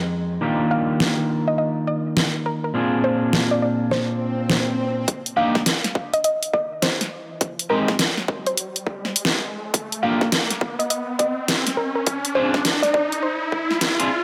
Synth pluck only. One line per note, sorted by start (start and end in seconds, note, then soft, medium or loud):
0.71 1.18 F5 medium
1.48 1.55 D#5 medium
1.58 1.70 D#5 medium
1.87 2.14 D#5 medium
2.46 2.58 A#4 medium
2.64 2.71 A#4 medium
3.04 3.48 C5 medium
3.51 3.58 D5 medium
3.62 3.74 D5 medium
3.91 4.39 C5 medium
5.37 5.84 F5 medium
6.14 6.21 D#5 medium
6.24 6.36 D#5 medium
6.53 6.80 D#5 medium
6.82 7.09 C5 medium
7.70 7.96 A#4 medium
8.47 8.87 C5 medium
10.03 10.50 F5 medium
10.79 10.86 D#5 medium
10.90 11.02 D#5 medium
11.19 11.45 D#5 medium
11.77 11.89 A#4 medium
11.95 12.03 A#4 medium
12.35 12.79 C5 medium
12.83 12.90 D5 medium
12.94 13.06 D5 medium
13.23 13.70 C5 medium